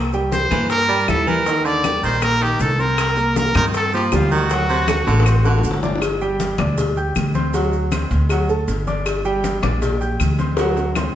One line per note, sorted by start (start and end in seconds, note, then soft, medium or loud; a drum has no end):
0.00 0.45 C2 medium
0.13 0.45 G3 medium
0.13 0.44 G4 medium
0.13 0.45 G5 medium
0.13 high bongo soft
0.13 high conga soft
0.13 maracas soft
0.32 0.68 C5 loud
0.32 high bongo medium
0.32 high conga medium
0.32 maracas medium
0.51 1.04 G2 loud
0.51 0.71 E3 medium
0.51 0.82 A#3 medium
0.51 0.82 A#4 medium
0.51 0.83 A#5 medium
0.51 high bongo soft
0.51 high conga medium
0.51 low conga medium
0.51 claves medium
0.51 maracas soft
0.70 1.06 A#4 loud
0.70 high bongo medium
0.70 high conga soft
0.70 maracas medium
0.89 1.09 G3 medium
0.89 1.05 G3 medium
0.89 1.05 G4 medium
0.89 1.05 G5 medium
0.89 high conga soft
0.89 maracas soft
1.08 1.97 D#2 medium
1.08 1.39 G3 medium
1.08 1.39 E4 medium
1.08 1.30 A4 loud
1.08 1.40 E5 medium
1.08 high bongo soft
1.08 low bongo medium
1.08 high conga medium
1.08 claves medium
1.08 maracas medium
1.26 1.47 E3 medium
1.26 1.67 A#4 loud
1.26 high conga medium
1.26 maracas soft
1.46 1.78 D#3 medium
1.46 1.78 D#4 medium
1.46 1.78 D#5 medium
1.46 high bongo medium
1.46 high conga soft
1.46 maracas medium
1.65 1.85 D3 medium
1.65 2.03 D5 loud
1.65 high bongo soft
1.65 high conga soft
1.65 maracas soft
1.84 2.16 G3 medium
1.84 2.16 G4 medium
1.84 2.16 G5 medium
1.84 high bongo medium
1.84 high conga medium
1.84 claves medium
1.84 maracas medium
2.03 2.56 A#1 medium
2.03 2.23 D#3 medium
2.03 2.24 C5 medium
2.03 high bongo soft
2.03 maracas soft
2.22 2.38 A#3 medium
2.22 2.44 A#4 loud
2.22 2.38 A#4 medium
2.22 2.38 A#5 medium
2.22 high bongo medium
2.22 high conga soft
2.22 claves medium
2.22 maracas medium
2.41 2.73 D#3 medium
2.41 2.72 D#4 medium
2.41 2.63 G4 medium
2.41 2.72 D#5 medium
2.41 2.72 D#6 medium
2.41 high conga soft
2.41 maracas soft
2.60 3.49 C2 medium
2.60 2.82 A4 medium
2.60 high bongo soft
2.60 low bongo medium
2.60 high conga soft
2.60 maracas medium
2.79 3.10 C4 medium
2.79 3.37 A#4 loud
2.79 3.10 C5 medium
2.79 3.10 C6 medium
2.79 maracas soft
2.98 high bongo medium
2.98 high conga soft
2.98 claves medium
2.98 maracas medium
3.17 3.48 A#3 medium
3.17 3.48 A#4 medium
3.17 3.49 A#5 medium
3.17 high bongo soft
3.17 high conga soft
3.17 maracas soft
3.36 3.55 A#4 loud
3.36 high bongo medium
3.36 high conga loud
3.36 maracas medium
3.55 4.08 G2 loud
3.55 3.75 D#3 medium
3.55 3.86 C4 medium
3.55 3.65 A#4 loud
3.55 3.86 C5 medium
3.55 3.87 C6 medium
3.55 high bongo soft
3.55 high conga loud
3.55 low conga medium
3.55 claves medium
3.55 maracas soft
3.74 3.93 A4 loud
3.74 high bongo medium
3.74 high conga soft
3.74 maracas medium
3.93 4.13 F3 medium
3.93 4.09 A#3 medium
3.93 4.03 G4 medium
3.93 4.09 A#4 medium
3.93 4.09 A#5 medium
3.93 high conga soft
3.93 maracas soft
4.12 5.01 D2 loud
4.12 4.43 G3 medium
4.12 4.34 F4 medium
4.12 4.43 G4 medium
4.12 4.44 G5 medium
4.12 high bongo soft
4.12 low bongo medium
4.12 high conga medium
4.12 claves medium
4.12 maracas medium
4.31 4.51 D#3 medium
4.31 5.84 F#4 medium
4.31 high conga medium
4.31 maracas soft
4.50 4.81 F#3 medium
4.50 4.82 F#4 medium
4.50 4.82 F#5 medium
4.50 high bongo medium
4.50 high conga soft
4.50 maracas medium
4.69 4.89 C3 medium
4.69 high bongo soft
4.69 high conga soft
4.69 maracas soft
4.88 5.19 A3 medium
4.88 5.19 A4 medium
4.88 5.20 A5 medium
4.88 high bongo medium
4.88 high conga loud
4.88 claves medium
4.88 maracas medium
5.07 5.60 A1 loud
5.07 5.27 D3 medium
5.07 high bongo medium
5.07 maracas soft
5.20 high bongo medium
5.26 5.42 C4 medium
5.26 5.42 C5 medium
5.26 5.42 C6 medium
5.26 high conga soft
5.26 claves medium
5.26 maracas medium
5.45 5.77 D3 medium
5.45 5.76 F#4 medium
5.45 5.76 F#5 medium
5.45 5.77 F#6 medium
5.45 high bongo medium
5.45 high conga soft
5.45 maracas soft
5.58 low bongo medium
5.63 6.53 G1 medium
5.63 high conga soft
5.63 maracas medium
5.71 low bongo medium
5.83 5.99 D4 medium
5.83 5.99 D5 medium
5.83 5.99 D6 medium
5.83 low bongo loud
5.83 high conga medium
5.83 maracas soft
5.95 low bongo medium
6.01 cowbell loud
6.01 high conga soft
6.01 claves medium
6.01 maracas medium
6.21 6.52 G3 medium
6.21 6.53 G4 medium
6.21 6.53 G5 medium
6.21 high conga soft
6.21 maracas soft
6.40 cowbell medium
6.40 high conga medium
6.40 maracas medium
6.58 7.12 D2 medium
6.58 6.90 D4 medium
6.58 6.90 D5 medium
6.58 6.91 D6 medium
6.58 cowbell medium
6.58 high conga loud
6.58 low conga medium
6.58 claves medium
6.58 maracas soft
6.78 cowbell loud
6.78 high conga soft
6.78 low conga medium
6.78 maracas medium
6.96 7.28 G4 medium
6.96 7.28 G5 medium
6.96 7.28 G6 medium
6.96 high conga soft
6.96 maracas soft
7.16 8.05 D2 medium
7.16 cowbell medium
7.16 high conga medium
7.16 claves medium
7.16 maracas medium
7.34 7.50 C4 medium
7.34 7.51 C5 medium
7.34 7.51 C6 medium
7.34 cowbell medium
7.34 high conga medium
7.34 maracas soft
7.53 7.85 F#3 medium
7.53 7.85 F#4 medium
7.53 7.86 F#5 medium
7.53 cowbell loud
7.53 high conga soft
7.53 maracas medium
7.73 high conga soft
7.73 maracas soft
7.92 8.23 C4 medium
7.92 8.23 C5 medium
7.92 8.24 C6 medium
7.92 cowbell medium
7.92 high conga medium
7.92 claves medium
7.92 maracas medium
8.11 8.64 D2 loud
8.11 cowbell medium
8.11 maracas soft
8.29 8.46 F#3 medium
8.29 8.46 F#4 medium
8.29 8.46 F#5 medium
8.29 cowbell loud
8.29 high conga soft
8.29 claves medium
8.29 maracas medium
8.49 8.80 A3 medium
8.49 8.80 A4 medium
8.49 8.81 A5 medium
8.49 high conga soft
8.49 maracas soft
8.68 9.57 G1 loud
8.68 cowbell medium
8.68 high conga soft
8.68 maracas medium
8.87 9.18 D4 medium
8.87 9.18 D5 medium
8.87 9.19 D6 medium
8.87 cowbell medium
8.87 high conga medium
8.87 maracas soft
9.06 cowbell loud
9.06 high conga soft
9.06 claves medium
9.06 maracas medium
9.25 9.56 G3 loud
9.25 9.56 G4 medium
9.25 9.56 G5 medium
9.25 high conga soft
9.25 maracas soft
9.44 cowbell medium
9.44 high conga medium
9.44 maracas medium
9.62 10.16 A#1 loud
9.62 9.94 D4 medium
9.62 9.94 D5 medium
9.62 9.94 D6 medium
9.62 cowbell medium
9.62 high conga loud
9.62 low conga medium
9.62 claves medium
9.62 maracas soft
9.82 cowbell loud
9.82 high conga soft
9.82 low conga medium
9.82 maracas medium
10.01 10.32 G4 medium
10.01 10.32 G5 medium
10.01 10.32 G6 medium
10.01 high conga soft
10.01 maracas soft
10.20 11.09 D2 loud
10.20 cowbell medium
10.20 high conga medium
10.20 claves medium
10.20 maracas medium
10.38 10.55 C4 medium
10.38 10.55 C5 medium
10.38 10.55 C6 medium
10.38 cowbell medium
10.38 high conga medium
10.38 maracas soft
10.57 10.89 F#3 medium
10.57 10.89 F#4 medium
10.57 10.90 F#5 medium
10.57 cowbell loud
10.57 high bongo medium
10.57 maracas medium
10.77 high bongo medium
10.77 high conga soft
10.77 maracas soft
10.95 11.15 C4 medium
10.95 11.15 C5 medium
10.95 11.15 C6 medium
10.95 cowbell medium
10.95 low bongo medium
10.95 high conga medium
10.95 claves medium
10.95 maracas medium